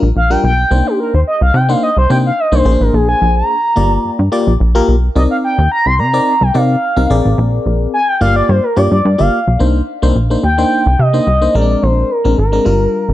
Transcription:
0.03 A#1
0.16 A#1 F5
0.30 G3 D4 F4 A#4 G5
0.44 B1 G5
0.71 C2 A#3 D4 D#4 C5
0.87 G4
1.00 A#4
1.14 D#2 C5
1.27 D#5
1.41 C2 F5
1.54 C3 D#4 C5 G5
1.69 A#3 D4 D#4 C5 F5
1.83 D#5
1.97 C2 C5
2.10 C3 A#3 D4 D#4 C5 G5
2.26 F5
2.40 D#5
2.52 C2 A#3 D4 D#4 C5
2.65 A#1 A#3 C#4 G#4 C5
2.72 D4
2.80 A1 A#4
2.94 A#1 G#4
3.09 G#5
3.21 A#1 G#5
3.36 A#5
3.76 G1 A#3 F4 G4 D5
4.05 G2
4.19 G2
4.32 A#3 F4 G4 D5
4.47 A#1
4.60 A#1
4.75 A#3 F4 G4 A#4
4.88 B1
5.15 C2 C4 D#4 A#4 D5 D#5
5.31 F5
5.44 G5
5.58 D#2
5.72 A#5
5.86 C2 C6
5.99 C3 A#4 D5 A#5
6.13 C4 D#4 A#4 D5
6.41 C2 G5
6.54 C3 C4 D#4 A#4 D5 F5
6.96 C2 C4 D#4 A#4 F5
7.10 A#1 C4 G#4 A#4 D5
7.25 A1
7.38 A#1
7.66 A#1
7.94 G#5
8.08 G5
8.21 G1 A#3 F4 G4 D5 F5
8.36 D5
8.49 G2 C5
8.63 A#4
8.76 G2 A#3 F4 G4 D5
8.91 G2 D5
9.05 G2
9.18 G1 A#3 F4 G4 D5 F5
9.48 B1
9.59 C2 A#3 D4 D#4 C5
10.02 C2 A#3 D4 D#4 C5
10.16 A#1
10.30 A#3 D4 D#4 C5
10.43 D#2 G5
10.58 A#3 D4 D#4 C5
10.86 C2
10.99 C3 D#5
11.13 A#3 D4 D#4 C5
11.27 C2
11.41 A#3 D4 D#4 C5
11.55 A#1 G#3 C4 C#4 A#4 D5
11.62 D4
11.82 A#1 C5
12.11 A#4
12.24 A#1 G#3 C4 D4 A#4
12.38 G#1 A#4
12.52 G#3 C4 D4 A#4
12.65 G1 G3 D4 F4 A#4
13.09 G1

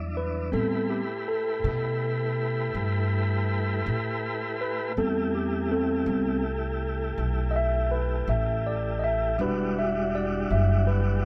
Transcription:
Already playing: E2 F#3 G3 D4 E4
0.17 B4
0.52 A2 G3 A3 B3 C4 E4 G4 A4 B4
0.90 G4
1.28 A4
1.64 B2
2.74 G2
3.86 A2
4.61 B4
4.97 E2 G3 A3 B3 C4 E4 G4 A4
5.35 G4
5.71 C4 A4
6.06 C2 G3 B3 C4
7.18 B1
7.51 D#5
7.56 E5
7.91 B4
8.28 A1 E5
8.67 D5
8.99 D#5
9.04 E5
9.38 E1 G3 D4 E4 F#4 B4
9.79 E5
10.15 D5
10.50 F#1 E5
10.87 B4

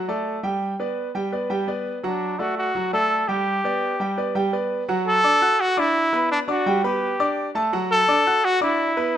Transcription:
0.08 A3 A4 D5
0.43 G3 G4 G5
0.80 B3 B4 D5
1.15 G3 G4 G5
1.32 B3 B4 D5
1.50 G3 G4 G5
1.67 B3 B4 D5
2.03 F#3 D4 F#4 F#5
2.39 A3 F#4 A4 D5
2.58 F#4
2.75 F#3 F#4 F#5
2.93 A3 A4 D5
3.28 G3 G4 G5
3.64 B3 B4 D5
4.00 G3 G4 G5
4.17 B3 B4 D5
4.35 G3 G4 G5
4.53 B3 B4 D5
4.88 F#3 F#4 F#5
5.08 A4
5.24 D4 D5 D6
5.42 F#4 F#5 F#6
5.61 F#4
5.77 D4 E4 D5 D6
6.13 B3 B4 B5
6.31 D4
6.48 D4 F#4 D5 D6
6.66 G3 G4 G5
6.84 B3 G4 B4 B5
7.20 D4 D5 D6
7.55 A3 A4 A5
7.73 F#3 F#4 F#5
7.91 A4
8.08 D4 D5 D6
8.27 F#4 F#5 F#6
8.45 F#4
8.61 D4 E4 D5 D6
8.97 B3 B4 B5

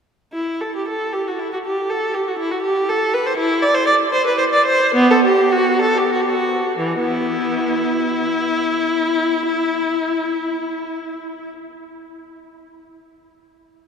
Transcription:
0.33 E4
0.61 A4
0.76 G4
0.88 A4
1.13 G4
1.28 F#4
1.39 E4
1.53 F#4
1.66 G4
1.90 A4
2.14 G4
2.28 F#4
2.39 E4
2.51 F#4
2.63 G4
2.89 A4
3.14 B4
3.27 C5
3.37 E4
3.62 D5
3.75 C5
3.86 D5
4.12 C5
4.27 B4
4.38 C5
4.54 D5
4.66 C5
4.95 B3
5.11 A4
5.25 G4
5.52 F#4
5.82 A4
5.98 G4
6.13 F#4
6.21 G4
6.29 F#4
6.78 E3
7.00 B3 E4

